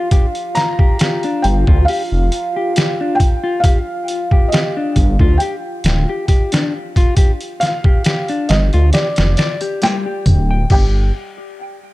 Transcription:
0.00 10.73 F4 medium
0.00 10.73 F5 medium
0.11 0.25 G4 medium
0.11 kick loud
0.11 closed hi-hat medium
0.35 closed hi-hat soft
0.55 1.46 A#5 loud
0.55 snare medium
0.55 closed hi-hat medium
0.79 0.99 G4 medium
0.79 kick loud
0.99 1.23 G4 medium
0.99 snare loud
0.99 closed hi-hat medium
1.23 1.43 D4 medium
1.23 closed hi-hat soft
1.42 1.65 G1 loud
1.42 1.84 G5 loud
1.42 closed hi-hat medium
1.67 1.86 D2 loud
1.67 1.86 F4 loud
1.67 kick loud
1.85 3.15 F5 loud
1.85 open hi-hat medium
1.89 2.02 G4 medium
2.12 2.30 F1 loud
2.32 closed hi-hat medium
2.56 2.76 G4 medium
2.76 2.99 G4 medium
2.76 snare loud
2.76 closed hi-hat loud
3.01 3.20 D4 medium
3.15 3.63 G5 medium
3.20 kick medium
3.20 closed hi-hat medium
3.44 3.62 F4 loud
3.60 4.46 F5 loud
3.60 kick loud
3.60 closed hi-hat medium
3.65 3.78 G4 medium
4.08 closed hi-hat medium
4.31 4.52 G4 medium
4.31 kick loud
4.48 5.41 D#5 medium
4.48 closed hi-hat medium
4.53 4.75 G4 medium
4.53 snare loud
4.77 4.96 D4 medium
4.96 5.17 G1 loud
4.96 kick medium
4.96 closed hi-hat medium
5.19 5.38 D2 medium
5.19 5.39 F4 loud
5.19 kick loud
5.38 5.55 G4 medium
5.38 6.68 G5 medium
5.38 closed hi-hat medium
5.84 6.05 D1 medium
5.84 snare loud
5.84 closed hi-hat medium
6.09 6.28 G4 medium
6.28 6.51 G4 medium
6.28 kick medium
6.28 closed hi-hat medium
6.52 6.72 D4 medium
6.52 snare loud
6.52 closed hi-hat medium
6.96 7.15 F4 loud
6.96 kick medium
6.96 closed hi-hat medium
7.17 7.31 G4 medium
7.17 kick loud
7.17 closed hi-hat medium
7.41 closed hi-hat soft
7.60 8.52 F5 loud
7.60 snare medium
7.60 closed hi-hat medium
7.84 8.05 G4 medium
7.84 kick loud
8.04 8.28 G4 medium
8.04 snare loud
8.04 closed hi-hat medium
8.28 8.49 D4 medium
8.28 closed hi-hat soft
8.49 8.70 G1 medium
8.49 8.59 D#5 medium
8.49 snare loud
8.49 closed hi-hat medium
8.73 8.92 D2 loud
8.73 8.92 F4 loud
8.73 closed hi-hat soft
8.93 9.07 G4 medium
8.93 9.78 D5 medium
8.93 snare loud
8.93 closed hi-hat medium
9.16 9.36 F1 loud
9.16 snare loud
9.16 closed hi-hat medium
9.37 9.60 D5 loud
9.37 snare loud
9.37 closed hi-hat medium
9.61 9.80 G4 medium
9.61 closed hi-hat medium
9.82 10.04 G3 medium
9.82 10.46 G5 loud
9.82 snare loud
9.82 closed hi-hat medium
10.06 10.24 G4 medium
10.26 10.65 D1 medium
10.26 kick loud
10.26 closed hi-hat medium
10.51 10.69 G5 medium
10.70 11.11 G1 loud
10.70 11.12 G4 medium
10.70 11.12 G5 medium
10.70 kick loud
10.70 crash medium

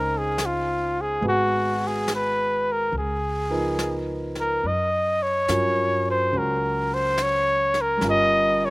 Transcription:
0.00 1.18 C#2 medium
0.00 1.19 G#3 soft
0.00 1.22 C4 soft
0.00 1.22 C#4 soft
0.00 1.23 D#4 soft
0.00 0.19 A#4 medium
0.00 1.26 A#4 soft
0.00 1.24 C5 soft
0.18 0.47 G#4 medium
0.38 snare soft
0.38 hi-hat pedal soft
0.46 1.03 F4 medium
1.01 1.26 G#4 medium
1.21 2.88 G#1 medium
1.21 2.92 G#3 soft
1.21 2.93 B3 soft
1.21 brush sweep soft
1.25 2.94 F#4 soft
1.25 1.89 F#4 medium
1.25 2.94 G#4 soft
1.87 2.11 G#4 medium
2.08 snare soft
2.08 hi-hat pedal soft
2.15 2.74 B4 medium
2.72 2.96 A#4 medium
2.92 4.59 C#2 medium
2.92 brush sweep soft
2.98 3.98 G#4 medium
3.50 4.63 F3 soft
3.50 4.64 B3 soft
3.50 4.64 D#4 soft
3.50 4.64 A#4 soft
3.79 snare soft
3.79 hi-hat pedal soft
4.35 snare soft
4.40 4.68 A#4 medium
4.63 5.45 F#2 medium
4.63 5.24 D#5 medium
4.63 brush sweep soft
5.23 6.07 C#5 medium
5.48 6.29 G2 medium
5.48 8.01 F#3 soft
5.48 6.31 C#4 soft
5.48 8.02 F4 soft
5.48 8.02 A#4 soft
5.48 snare soft
5.48 hi-hat pedal soft
6.11 6.40 C5 medium
6.33 7.97 C#2 medium
6.33 8.00 C#4 soft
6.33 8.02 F#4 soft
6.33 brush sweep soft
6.38 6.95 A#4 medium
6.94 7.24 C5 medium
7.18 snare soft
7.18 hi-hat pedal soft
7.23 7.83 C#5 medium
7.74 snare soft
7.81 8.05 A#4 medium
7.97 8.70 G3 soft
7.97 8.70 C#4 soft
7.97 brush sweep soft
7.97 snare soft
8.02 8.70 G1 medium
8.02 8.70 F4 soft
8.08 8.70 A#4 soft
8.08 8.67 D#5 medium
8.65 8.70 C#5 medium

